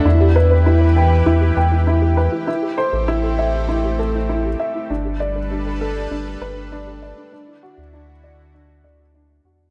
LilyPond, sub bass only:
\new Staff \with { instrumentName = "Sub bass" } { \clef bass \time 4/4 \key e \minor \tempo 4 = 99 e,2 e,8 e,4~ e,16 r16 | r8. a,,2~ a,,8. r8 | g,,2 g,,8 g,,4~ g,,16 r16 | r8. d,4.~ d,16 d,4 e,8 | }